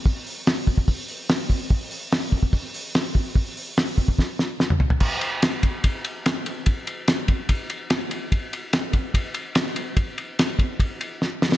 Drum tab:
CC |----------------|----------------|----------------|x---------------|
RD |----------------|----------------|----------------|--x-x-x-x-x-x-x-|
HH |o-o-o-o-o-o-o-o-|o-o-o-o-o-o-o-o-|o-o-o-o---------|----------------|
SD |----o-------o---|----o-------o---|----o---o-o-o---|----o-------o---|
T2 |----------------|----------------|-------------o--|----------------|
FT |----------------|----------------|--------------oo|----------------|
BD |o-----ooo-----o-|o-----ooo-----o-|o-----ooo-------|o-----o-o-------|

CC |----------------|----------------|----------------|
RD |x-x-x-x-x-x-x-x-|x-x-x-x-x-x-x-x-|x-x-x-x-x-x-----|
HH |----------------|----------------|----------------|
SD |----o-------o---|----o-------oo--|----o-------o-oo|
T2 |----------------|----------------|----------------|
FT |----------------|----------------|----------------|
BD |o-----o-o-------|o-----o-o-------|o-----o-o-------|